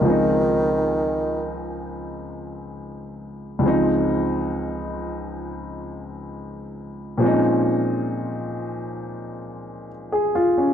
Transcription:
Already playing: bassoon D#3
0.01 grand piano C#2 F3
0.06 grand piano G#3 C4
0.10 grand piano D#4
3.59 grand piano C#2 E3
3.63 grand piano G#3 C4
3.68 grand piano F3 D#4
7.18 grand piano A#2 F3 G#3
7.23 grand piano C4 C#4 D#4
10.12 grand piano G#4
10.35 grand piano F4
10.58 grand piano C#4

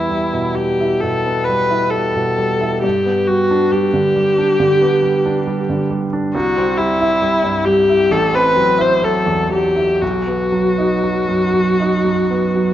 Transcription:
Already playing: grand piano E2 G3 B3 E4, viola E4
0.09 grand piano G3
0.33 grand piano B2
0.55 grand piano G3, viola G4
0.80 grand piano E4
1.00 grand piano B2, viola A4
1.26 grand piano B3
1.44 viola B4
1.49 grand piano G3
1.70 grand piano E4
1.90 grand piano G3, viola A4
2.16 grand piano B2
2.38 grand piano G3
2.61 grand piano E4
2.82 grand piano G2, viola G4
3.06 grand piano B3
3.27 grand piano G3, viola F#4
3.51 grand piano D4
3.72 grand piano G3, viola G4
3.94 grand piano D3
4.16 grand piano G3
4.38 grand piano D4
4.60 grand piano D3
4.81 grand piano B3
5.03 grand piano G3
5.26 grand piano D4
5.47 grand piano G3
5.70 grand piano D3
5.90 grand piano G3
6.13 grand piano D4
6.35 grand piano C2, viola F#4
6.57 grand piano C4
6.76 grand piano G3, viola E4
7.00 grand piano E4
7.22 grand piano G3
7.44 grand piano G2
7.65 grand piano G3, viola G4
7.89 grand piano E4
8.11 grand piano A1, viola A4
8.33 grand piano C4, viola B4
8.56 grand piano F#3
8.78 grand piano E4, viola C5
9.02 grand piano F#3, viola A4
9.26 grand piano E2
9.52 grand piano F#3, viola G4
9.76 grand piano E4
10.02 grand piano B1, viola F#4
10.27 grand piano B3
10.52 grand piano F#3
10.78 grand piano D#4
11.04 grand piano F#3
11.28 grand piano F#2
11.54 grand piano F#3
11.80 grand piano D#4
12.05 grand piano F#2
12.30 grand piano B3
12.55 grand piano F#3

